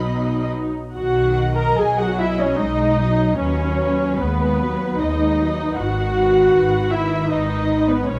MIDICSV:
0, 0, Header, 1, 6, 480
1, 0, Start_track
1, 0, Key_signature, 5, "major"
1, 0, Tempo, 894188
1, 511, Time_signature, 3, 2, 24, 8
1, 511, Tempo, 824176
1, 1471, Tempo, 793651
1, 3391, Tempo, 765306
1, 4906, End_track
2, 0, Start_track
2, 0, Title_t, "Violin section"
2, 0, Program_c, 0, 48
2, 0, Note_on_c, 0, 75, 68
2, 257, Note_off_c, 0, 75, 0
2, 513, Note_on_c, 0, 78, 59
2, 852, Note_off_c, 0, 78, 0
2, 879, Note_on_c, 0, 82, 62
2, 999, Note_off_c, 0, 82, 0
2, 999, Note_on_c, 0, 80, 70
2, 1119, Note_off_c, 0, 80, 0
2, 1122, Note_on_c, 0, 78, 63
2, 1240, Note_off_c, 0, 78, 0
2, 1248, Note_on_c, 0, 76, 58
2, 1361, Note_off_c, 0, 76, 0
2, 1364, Note_on_c, 0, 73, 58
2, 1472, Note_on_c, 0, 75, 59
2, 1476, Note_off_c, 0, 73, 0
2, 1950, Note_off_c, 0, 75, 0
2, 1955, Note_on_c, 0, 73, 58
2, 2426, Note_off_c, 0, 73, 0
2, 2434, Note_on_c, 0, 71, 64
2, 2909, Note_off_c, 0, 71, 0
2, 2925, Note_on_c, 0, 75, 62
2, 3396, Note_off_c, 0, 75, 0
2, 3396, Note_on_c, 0, 78, 66
2, 4097, Note_off_c, 0, 78, 0
2, 4109, Note_on_c, 0, 76, 62
2, 4348, Note_off_c, 0, 76, 0
2, 4355, Note_on_c, 0, 75, 63
2, 4715, Note_on_c, 0, 71, 59
2, 4716, Note_off_c, 0, 75, 0
2, 4830, Note_on_c, 0, 73, 69
2, 4835, Note_off_c, 0, 71, 0
2, 4906, Note_off_c, 0, 73, 0
2, 4906, End_track
3, 0, Start_track
3, 0, Title_t, "Violin section"
3, 0, Program_c, 1, 48
3, 0, Note_on_c, 1, 83, 94
3, 272, Note_off_c, 1, 83, 0
3, 752, Note_on_c, 1, 75, 51
3, 1228, Note_off_c, 1, 75, 0
3, 1239, Note_on_c, 1, 75, 53
3, 1701, Note_off_c, 1, 75, 0
3, 1719, Note_on_c, 1, 75, 46
3, 1950, Note_off_c, 1, 75, 0
3, 1954, Note_on_c, 1, 71, 48
3, 2186, Note_off_c, 1, 71, 0
3, 2193, Note_on_c, 1, 71, 51
3, 2667, Note_off_c, 1, 71, 0
3, 2682, Note_on_c, 1, 71, 47
3, 3150, Note_off_c, 1, 71, 0
3, 3158, Note_on_c, 1, 71, 45
3, 3388, Note_off_c, 1, 71, 0
3, 3632, Note_on_c, 1, 71, 54
3, 4099, Note_off_c, 1, 71, 0
3, 4116, Note_on_c, 1, 71, 49
3, 4585, Note_off_c, 1, 71, 0
3, 4598, Note_on_c, 1, 71, 46
3, 4823, Note_off_c, 1, 71, 0
3, 4831, Note_on_c, 1, 71, 50
3, 4906, Note_off_c, 1, 71, 0
3, 4906, End_track
4, 0, Start_track
4, 0, Title_t, "Viola section"
4, 0, Program_c, 2, 48
4, 0, Note_on_c, 2, 54, 76
4, 0, Note_on_c, 2, 63, 71
4, 372, Note_off_c, 2, 63, 0
4, 392, Note_off_c, 2, 54, 0
4, 509, Note_on_c, 2, 66, 80
4, 851, Note_off_c, 2, 66, 0
4, 873, Note_on_c, 2, 70, 71
4, 993, Note_off_c, 2, 70, 0
4, 998, Note_on_c, 2, 68, 74
4, 1119, Note_off_c, 2, 68, 0
4, 1124, Note_on_c, 2, 66, 72
4, 1236, Note_on_c, 2, 64, 75
4, 1241, Note_off_c, 2, 66, 0
4, 1352, Note_on_c, 2, 61, 69
4, 1355, Note_off_c, 2, 64, 0
4, 1459, Note_on_c, 2, 63, 81
4, 1470, Note_off_c, 2, 61, 0
4, 1940, Note_on_c, 2, 61, 79
4, 1944, Note_off_c, 2, 63, 0
4, 2419, Note_off_c, 2, 61, 0
4, 2427, Note_on_c, 2, 59, 72
4, 2910, Note_on_c, 2, 63, 76
4, 2915, Note_off_c, 2, 59, 0
4, 3379, Note_off_c, 2, 63, 0
4, 3381, Note_on_c, 2, 66, 82
4, 4104, Note_off_c, 2, 66, 0
4, 4107, Note_on_c, 2, 64, 78
4, 4347, Note_off_c, 2, 64, 0
4, 4349, Note_on_c, 2, 63, 77
4, 4706, Note_off_c, 2, 63, 0
4, 4714, Note_on_c, 2, 59, 68
4, 4825, Note_on_c, 2, 61, 83
4, 4834, Note_off_c, 2, 59, 0
4, 4906, Note_off_c, 2, 61, 0
4, 4906, End_track
5, 0, Start_track
5, 0, Title_t, "Cello section"
5, 0, Program_c, 3, 48
5, 0, Note_on_c, 3, 47, 76
5, 257, Note_off_c, 3, 47, 0
5, 511, Note_on_c, 3, 51, 60
5, 974, Note_off_c, 3, 51, 0
5, 1000, Note_on_c, 3, 54, 59
5, 1473, Note_off_c, 3, 54, 0
5, 1478, Note_on_c, 3, 56, 61
5, 1712, Note_on_c, 3, 54, 56
5, 1713, Note_off_c, 3, 56, 0
5, 1944, Note_off_c, 3, 54, 0
5, 1951, Note_on_c, 3, 54, 59
5, 2424, Note_off_c, 3, 54, 0
5, 2428, Note_on_c, 3, 56, 59
5, 2674, Note_off_c, 3, 56, 0
5, 2680, Note_on_c, 3, 54, 56
5, 2919, Note_on_c, 3, 56, 57
5, 2920, Note_off_c, 3, 54, 0
5, 3158, Note_off_c, 3, 56, 0
5, 3160, Note_on_c, 3, 54, 52
5, 3394, Note_off_c, 3, 54, 0
5, 3394, Note_on_c, 3, 51, 61
5, 4809, Note_off_c, 3, 51, 0
5, 4839, Note_on_c, 3, 56, 64
5, 4906, Note_off_c, 3, 56, 0
5, 4906, End_track
6, 0, Start_track
6, 0, Title_t, "Double bass section"
6, 0, Program_c, 4, 48
6, 0, Note_on_c, 4, 35, 69
6, 399, Note_off_c, 4, 35, 0
6, 517, Note_on_c, 4, 35, 65
6, 942, Note_off_c, 4, 35, 0
6, 997, Note_on_c, 4, 35, 60
6, 1417, Note_off_c, 4, 35, 0
6, 1470, Note_on_c, 4, 35, 58
6, 1893, Note_off_c, 4, 35, 0
6, 1948, Note_on_c, 4, 39, 62
6, 2375, Note_off_c, 4, 39, 0
6, 2433, Note_on_c, 4, 39, 62
6, 2861, Note_off_c, 4, 39, 0
6, 2916, Note_on_c, 4, 39, 59
6, 3336, Note_off_c, 4, 39, 0
6, 3395, Note_on_c, 4, 32, 62
6, 3817, Note_off_c, 4, 32, 0
6, 3880, Note_on_c, 4, 32, 57
6, 4296, Note_off_c, 4, 32, 0
6, 4354, Note_on_c, 4, 32, 60
6, 4779, Note_off_c, 4, 32, 0
6, 4840, Note_on_c, 4, 35, 66
6, 4906, Note_off_c, 4, 35, 0
6, 4906, End_track
0, 0, End_of_file